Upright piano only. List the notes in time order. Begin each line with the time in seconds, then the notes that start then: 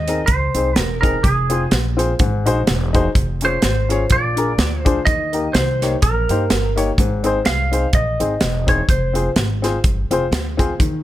0.08 C4 D#4 G#4 A#4
0.55 C4 D#4 G#4 C5
1.02 C4 D#4 G#4 A#4
1.50 C4 F4 G#4 C5
1.97 C4 F4 G#4 C5
2.20 G#2
2.46 D#4 F#4 G#4 C5
2.93 D#4 F#4 G#4 C5
3.42 C#4 F4 G#4 C#5
3.89 C#4 F4 G#4 C#5
4.11 A#2
4.36 D4 F4 G#4 A#4
4.85 D4 F4 G#4 C5
5.06 D#3
5.33 A#3 D#4 G4 A#4
5.82 A#3 D#4 G4 C#5
6.29 A#3 D#4 G4 C5
6.76 A#3 D#4 G4 C#5
6.99 G#2
7.24 C4 D#4 G#4 C5
7.72 C4 D#4 G#4 C5
8.20 C4 D#4 G#4 C5
8.66 C4 D#4 G#4 C5
9.14 C4 F4 G#4 C5
9.62 C4 F4 G#4 C5
10.11 C4 F4 G#4 C5
10.57 C4 F4 G#4 C5
10.79 D#3